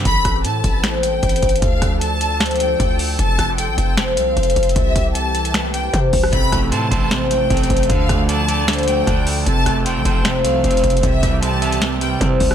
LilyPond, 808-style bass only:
\new Staff \with { instrumentName = "808-style bass" } { \clef bass \time 4/4 \key a \minor \tempo 4 = 153 a,,8 a,,8 a,8 a,,4. a,,8 a,,8 | d,8 d,2~ d,8 d,4 | f,,8 f,,8. a,,16 f,,4 c,8 f,,8 f,,8 | c,8 c,2~ c,8 c8 c,8 |
a,,8 a,,8 a,8 a,,4. a,,8 a,,8 | d,8 d,2~ d,8 d,4 | f,,8 f,,8. a,,16 f,,4 c,8 f,,8 f,,8 | c,8 c,2~ c,8 c8 c,8 | }